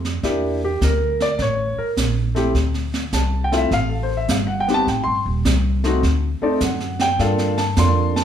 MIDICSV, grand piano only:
0, 0, Header, 1, 2, 480
1, 0, Start_track
1, 0, Tempo, 579710
1, 200, Time_signature, 4, 2, 24, 8
1, 6824, End_track
2, 0, Start_track
2, 0, Title_t, "Grand piano"
2, 0, Program_c, 0, 0
2, 193, Note_on_c, 0, 58, 65
2, 198, Note_on_c, 0, 62, 63
2, 201, Note_on_c, 0, 64, 61
2, 203, Note_on_c, 0, 67, 74
2, 488, Note_off_c, 0, 58, 0
2, 490, Note_off_c, 0, 62, 0
2, 492, Note_off_c, 0, 64, 0
2, 493, Note_off_c, 0, 67, 0
2, 535, Note_on_c, 0, 67, 85
2, 680, Note_off_c, 0, 67, 0
2, 695, Note_on_c, 0, 70, 83
2, 1001, Note_off_c, 0, 70, 0
2, 1012, Note_on_c, 0, 74, 98
2, 1159, Note_off_c, 0, 74, 0
2, 1175, Note_on_c, 0, 73, 91
2, 1478, Note_on_c, 0, 70, 84
2, 1481, Note_off_c, 0, 73, 0
2, 1573, Note_off_c, 0, 70, 0
2, 1944, Note_on_c, 0, 57, 72
2, 1952, Note_on_c, 0, 60, 66
2, 1956, Note_on_c, 0, 64, 62
2, 1963, Note_on_c, 0, 67, 78
2, 2093, Note_off_c, 0, 57, 0
2, 2097, Note_off_c, 0, 60, 0
2, 2099, Note_off_c, 0, 64, 0
2, 2103, Note_off_c, 0, 67, 0
2, 2597, Note_on_c, 0, 81, 80
2, 2851, Note_on_c, 0, 79, 91
2, 2912, Note_off_c, 0, 81, 0
2, 2914, Note_on_c, 0, 57, 75
2, 2914, Note_on_c, 0, 60, 63
2, 2922, Note_on_c, 0, 64, 72
2, 2925, Note_on_c, 0, 65, 78
2, 2961, Note_off_c, 0, 79, 0
2, 2961, Note_on_c, 0, 76, 88
2, 3055, Note_off_c, 0, 76, 0
2, 3058, Note_off_c, 0, 57, 0
2, 3058, Note_off_c, 0, 60, 0
2, 3062, Note_off_c, 0, 64, 0
2, 3063, Note_off_c, 0, 65, 0
2, 3092, Note_on_c, 0, 77, 104
2, 3222, Note_on_c, 0, 69, 54
2, 3242, Note_off_c, 0, 77, 0
2, 3337, Note_on_c, 0, 72, 77
2, 3388, Note_off_c, 0, 69, 0
2, 3444, Note_off_c, 0, 72, 0
2, 3454, Note_on_c, 0, 76, 72
2, 3542, Note_off_c, 0, 76, 0
2, 3567, Note_on_c, 0, 77, 75
2, 3701, Note_on_c, 0, 78, 85
2, 3719, Note_off_c, 0, 77, 0
2, 3812, Note_on_c, 0, 79, 97
2, 3867, Note_off_c, 0, 78, 0
2, 3874, Note_on_c, 0, 59, 67
2, 3883, Note_on_c, 0, 60, 62
2, 3886, Note_on_c, 0, 63, 61
2, 3893, Note_on_c, 0, 67, 75
2, 3921, Note_off_c, 0, 79, 0
2, 3926, Note_on_c, 0, 81, 117
2, 4018, Note_off_c, 0, 59, 0
2, 4018, Note_off_c, 0, 81, 0
2, 4022, Note_off_c, 0, 60, 0
2, 4024, Note_off_c, 0, 63, 0
2, 4027, Note_off_c, 0, 67, 0
2, 4046, Note_on_c, 0, 79, 82
2, 4170, Note_on_c, 0, 84, 94
2, 4199, Note_off_c, 0, 79, 0
2, 4276, Note_off_c, 0, 84, 0
2, 4834, Note_on_c, 0, 57, 76
2, 4840, Note_on_c, 0, 60, 69
2, 4842, Note_on_c, 0, 63, 74
2, 4851, Note_on_c, 0, 66, 77
2, 4978, Note_off_c, 0, 57, 0
2, 4981, Note_off_c, 0, 60, 0
2, 4982, Note_off_c, 0, 63, 0
2, 4987, Note_off_c, 0, 66, 0
2, 5315, Note_on_c, 0, 57, 74
2, 5319, Note_on_c, 0, 60, 72
2, 5323, Note_on_c, 0, 63, 66
2, 5325, Note_on_c, 0, 74, 75
2, 5327, Note_on_c, 0, 69, 81
2, 5458, Note_off_c, 0, 57, 0
2, 5460, Note_off_c, 0, 60, 0
2, 5463, Note_off_c, 0, 63, 0
2, 5464, Note_off_c, 0, 69, 0
2, 5474, Note_off_c, 0, 74, 0
2, 5489, Note_on_c, 0, 78, 72
2, 5798, Note_off_c, 0, 78, 0
2, 5807, Note_on_c, 0, 79, 112
2, 5955, Note_off_c, 0, 79, 0
2, 5959, Note_on_c, 0, 58, 73
2, 5959, Note_on_c, 0, 62, 65
2, 5965, Note_on_c, 0, 77, 77
2, 5969, Note_on_c, 0, 65, 71
2, 5971, Note_on_c, 0, 69, 83
2, 6250, Note_off_c, 0, 58, 0
2, 6250, Note_off_c, 0, 62, 0
2, 6255, Note_off_c, 0, 65, 0
2, 6256, Note_off_c, 0, 69, 0
2, 6273, Note_on_c, 0, 81, 88
2, 6275, Note_off_c, 0, 77, 0
2, 6428, Note_off_c, 0, 81, 0
2, 6441, Note_on_c, 0, 58, 66
2, 6447, Note_on_c, 0, 84, 94
2, 6448, Note_on_c, 0, 65, 60
2, 6450, Note_on_c, 0, 62, 66
2, 6458, Note_on_c, 0, 69, 66
2, 6731, Note_off_c, 0, 58, 0
2, 6734, Note_off_c, 0, 65, 0
2, 6735, Note_off_c, 0, 62, 0
2, 6739, Note_off_c, 0, 69, 0
2, 6757, Note_off_c, 0, 84, 0
2, 6759, Note_on_c, 0, 81, 94
2, 6824, Note_off_c, 0, 81, 0
2, 6824, End_track
0, 0, End_of_file